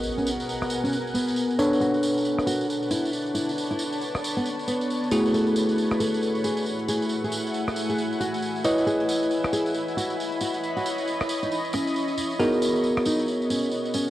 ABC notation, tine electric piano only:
X:1
M:4/4
L:1/8
Q:"Swing 16ths" 1/4=136
K:G#phr
V:1 name="Tine electric piano"
[B,FG^A]6- [B,FGA] [=D=ABc]- | [=DABc]8- | [=DABc]6- [DABc] [A,EFG]- | [A,EFG]8- |
[A,EFG]6- [A,EFG] [EBcd]- | [EBcd]8- | [EBcd]6- [EBcd] z | [B,FG^A]8 |]